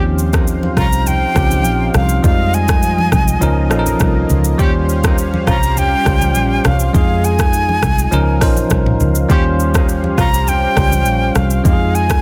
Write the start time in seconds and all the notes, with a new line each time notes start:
Already playing: D#2 F3 C4 C#4 D#4 F4 G4 C5 F5
0.18 shaker
0.33 D#3 A#3 C4 D#4, kick, cross-stick, shaker
0.47 shaker
0.63 high conga
0.77 C2 F3 C#4 F4 A#5, kick, cross-stick, high conga, low conga, shaker
0.93 shaker
1.06 G5, low conga, shaker
1.34 C#2 F3 C4 C#4 G4, kick, cross-stick, shaker
1.51 high conga, shaker
1.64 A#1, shaker
1.94 C2 F5, cross-stick, high conga, low conga, shaker
2.09 shaker
2.23 F2 F3 G3 G#3 D#4 D#5 F5, kick, low conga, shaker
2.54 G#5, shaker
2.68 kick, cross-stick, shaker
2.83 shaker
2.98 high conga
3.12 C2, kick, cross-stick, high conga, low conga, shaker
3.28 shaker
3.41 C#2 F3 A#3 C#4 D#4 F4 A#4, low conga, shaker
3.70 A#1 F3 C#4 D#4 A4, cross-stick, shaker
3.79 A#4
3.86 high conga, shaker
4.00 C2, kick, cross-stick, shaker
4.29 C#2, high conga, low conga, shaker
4.44 shaker
4.58 D#2 G3 C#4 F4 G4 C5 F5, kick, low conga, shaker
4.89 shaker
5.04 D#3 A#3 C4 D#4, kick, cross-stick, shaker
5.18 shaker
5.34 high conga
5.47 C2 F3 C#4 F4 A#5, kick, cross-stick, high conga, low conga, shaker
5.63 shaker
5.77 G5, low conga, shaker
6.05 C#2 G3 C#4 F4 C5, kick, cross-stick, shaker
6.21 high conga, shaker
6.35 A#1, shaker
6.65 C2 F5, cross-stick, high conga, low conga, shaker
6.79 shaker
6.93 F2 G#3 D#4 F4 G#4 F5 G#5, kick, low conga, shaker
7.24 G#5, shaker
7.39 kick, cross-stick, shaker
7.53 shaker
7.69 high conga
7.83 C2, kick, cross-stick, high conga, low conga, shaker
7.98 shaker
8.11 C#2 F3 C#4 D#4 A#4 F5, low conga, shaker
8.41 A#1 F3 C#4 D#4 C5, kick, cross-stick, open hi-hat, shaker
8.56 high conga, shaker
8.70 C2, kick, cross-stick, shaker
8.86 mid tom
9.00 C#2, high conga, low conga, shaker
9.15 shaker
9.29 D#2 G3 C#4 F4 G4 C5, kick, low conga, shaker
9.60 shaker
9.74 D#3 A#3 C4 D#4, kick, cross-stick, shaker
9.89 shaker
10.04 high conga
10.18 C2 F3 C#4 F4 A#5, kick, cross-stick, high conga, low conga, shaker
10.34 shaker
10.47 G5, low conga, shaker
10.76 C#2 G3 C#4 F4 C5, kick, cross-stick, shaker
10.91 high conga, shaker
11.05 A#1, shaker
11.35 C2 F5, cross-stick, high conga, low conga, shaker
11.50 shaker
11.64 F2 G#3 D#4 F4 G4 G#4 F5 G#5, kick, low conga, shaker
11.73 G#4
11.95 G#5, shaker
12.10 kick, cross-stick, shaker